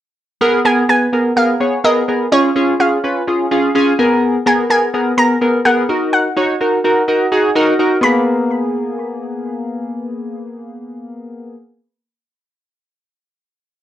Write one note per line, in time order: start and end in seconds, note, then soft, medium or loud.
0.41 0.59 B3 loud
0.41 0.60 G#4 loud
0.41 0.60 A#4 loud
0.65 0.83 B3 medium
0.65 0.83 G#4 medium
0.65 0.84 A#4 loud
0.65 0.88 G#5 loud
0.89 1.07 B3 medium
0.89 1.07 G#4 medium
0.89 1.08 B4 medium
0.89 1.38 G#5 loud
1.13 1.31 B3 medium
1.13 1.31 G#4 medium
1.13 1.31 A#4 medium
1.36 1.55 B3 medium
1.36 1.55 G#4 medium
1.36 1.55 A#4 medium
1.36 1.86 F5 medium
1.60 1.78 B3 medium
1.60 1.79 G#4 medium
1.60 1.79 C#5 medium
1.84 2.02 B3 medium
1.84 2.02 G#4 medium
1.84 2.03 A#4 loud
1.84 2.33 D#5 medium
2.08 2.26 B3 medium
2.08 2.26 G#4 medium
2.08 2.26 A#4 medium
2.32 2.50 C#4 medium
2.32 2.50 F4 medium
2.32 2.50 G#4 loud
2.32 2.81 C#5 medium
2.55 2.74 C#4 medium
2.55 2.74 F4 medium
2.55 2.74 G#4 loud
2.79 2.98 C#4 medium
2.79 2.98 F4 medium
2.79 2.98 G#4 medium
2.79 3.24 F5 medium
3.03 3.22 C#4 medium
3.03 3.22 F4 medium
3.03 3.22 B4 medium
3.27 3.45 C#4 medium
3.27 3.45 F4 medium
3.27 3.46 G#4 medium
3.51 3.69 C#4 medium
3.51 3.69 F4 medium
3.51 3.69 G#4 loud
3.51 3.73 F5 medium
3.75 3.93 C#4 loud
3.75 3.93 F4 loud
3.75 3.93 G#4 loud
3.75 3.97 G#5 medium
3.99 4.37 B3 medium
3.99 4.37 G#4 medium
3.99 4.37 A#4 loud
3.99 4.21 G#5 medium
4.46 4.64 B3 medium
4.46 4.64 G#4 medium
4.46 4.65 A#4 loud
4.46 4.69 G#5 medium
4.70 4.88 B3 medium
4.70 4.88 G#4 medium
4.70 4.88 A#4 medium
4.70 5.19 G#5 medium
4.94 5.12 B3 medium
4.94 5.12 G#4 medium
4.94 5.12 A#4 medium
5.18 5.36 B3 medium
5.18 5.36 G#4 medium
5.18 5.36 A#4 medium
5.18 5.67 A#5 loud
5.41 5.60 B3 medium
5.41 5.60 G#4 medium
5.41 5.60 A#4 medium
5.65 5.83 B3 medium
5.65 5.83 G#4 medium
5.65 5.84 A#4 loud
5.65 6.12 F#5 medium
5.89 6.28 D#4 medium
5.89 6.28 F#4 medium
5.89 6.28 A#4 medium
6.13 7.52 F#5 medium
6.37 6.55 D#4 medium
6.37 6.55 F#4 medium
6.37 6.55 C#5 loud
6.61 6.79 D#4 medium
6.61 6.79 F#4 medium
6.61 6.79 A#4 medium
6.84 7.02 D#4 medium
6.84 7.03 F#4 medium
6.84 7.03 A#4 medium
7.08 7.26 D#4 medium
7.08 7.26 F#4 medium
7.08 7.26 A#4 medium
7.32 7.50 D#4 medium
7.32 7.50 F#4 medium
7.32 7.50 G#4 loud
7.56 7.74 D#4 loud
7.56 7.74 F#4 loud
7.56 7.74 A#4 loud
7.79 7.98 D#4 medium
7.79 7.98 F#4 medium
7.79 7.98 A#4 medium
8.01 11.51 B3 medium
8.01 11.54 G#4 medium
8.01 11.53 B5 medium
8.05 11.55 A#3 medium